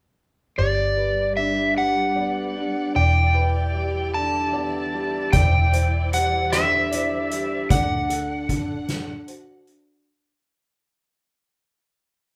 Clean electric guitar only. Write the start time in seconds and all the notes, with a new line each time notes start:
0.58 G3
1.38 D4
1.77 G3
2.17 B3
2.57 D4
2.96 E3
3.75 G3
4.15 D3
4.54 B3
4.94 G3
5.33 E3
6.13 G3
6.52 D3
6.91 E4
7.31 G3
7.71 D3
8.49 D4
8.89 D3
9.29 F#4
9.69 D4